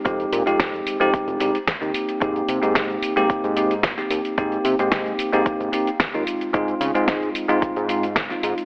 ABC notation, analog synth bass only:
X:1
M:4/4
L:1/16
Q:1/4=111
K:Ab
V:1 name="Analog synth bass" clef=bass
F,, z B,, F,,3 z F,, z F,,, C,, z2 E,, z2 | A,, z C, A,,3 z A,, A,, A,,3 A,,, z E,, z | A,, z C, A,,3 z A,, z A,,, z3 E,, z2 | A,, z D, A,,3 z A,, z A,,3 A,,, z A,, z |]